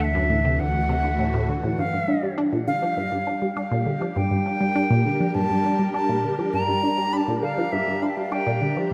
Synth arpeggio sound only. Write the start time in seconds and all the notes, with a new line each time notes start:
0.15 F#2
0.30 A2
0.45 C3
0.59 D2
0.74 D2
0.89 C3
1.04 D3
1.19 A2
1.34 A2
1.49 D3
1.64 A2
1.78 G2
1.93 G2
2.08 D4
2.23 G3
2.38 D4
2.53 A#2
2.68 D3
2.82 F3
2.97 G2
3.12 G2
3.27 D4
3.42 G3
3.57 D4
3.71 A#2
3.86 D3
4.01 F3
4.16 G2
4.31 G2
4.46 D4
4.61 G3
4.76 D4
4.90 A#2
5.05 D3
5.20 F3
5.35 G2
5.50 G2
5.64 D4
5.79 G3
5.94 D4
6.09 A#2
6.24 D3
6.39 F3
6.53 G2
6.68 G2
6.83 D4
6.98 G3
7.13 D4
7.28 A#2
7.43 D3
7.58 F3
7.73 G2
7.88 G2
8.02 D4
8.17 G3
8.32 D4
8.47 A#2
8.62 D3
8.76 F3